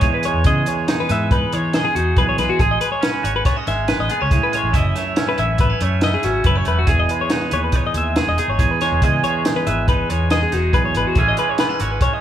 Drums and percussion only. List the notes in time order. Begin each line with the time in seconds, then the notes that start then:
0.01 kick, closed hi-hat
0.23 closed hi-hat
0.44 kick, closed hi-hat
0.66 closed hi-hat
0.88 snare, closed hi-hat
1.09 snare, closed hi-hat
1.31 kick, closed hi-hat
1.52 closed hi-hat
1.73 snare, closed hi-hat
1.96 closed hi-hat
2.17 kick, closed hi-hat
2.38 snare, closed hi-hat
2.59 kick, closed hi-hat
2.81 closed hi-hat
3.03 snare, closed hi-hat
3.25 closed hi-hat
3.45 kick, snare, closed hi-hat
3.67 snare, closed hi-hat
3.88 snare, closed hi-hat
4.09 closed hi-hat
4.31 kick, closed hi-hat
4.53 closed hi-hat
4.74 kick, closed hi-hat
4.96 snare, closed hi-hat
5.16 snare, closed hi-hat
5.38 closed hi-hat
5.58 kick, closed hi-hat
5.80 closed hi-hat
6.01 snare, closed hi-hat
6.23 snare, closed hi-hat
6.44 kick, closed hi-hat
6.65 closed hi-hat
6.87 kick, closed hi-hat
7.09 closed hi-hat
7.30 snare, closed hi-hat
7.51 closed hi-hat
7.72 kick, closed hi-hat
7.94 closed hi-hat
8.16 snare, closed hi-hat
8.38 closed hi-hat
8.59 kick, closed hi-hat
8.81 snare, closed hi-hat
9.02 kick, closed hi-hat
9.24 closed hi-hat
9.45 snare, closed hi-hat
9.67 closed hi-hat
9.88 kick, closed hi-hat
10.10 closed hi-hat
10.30 snare, closed hi-hat
10.52 snare, closed hi-hat
10.73 kick, closed hi-hat
10.95 closed hi-hat
11.15 kick, closed hi-hat
11.37 closed hi-hat
11.58 snare, closed hi-hat
11.80 closed hi-hat
12.01 kick, closed hi-hat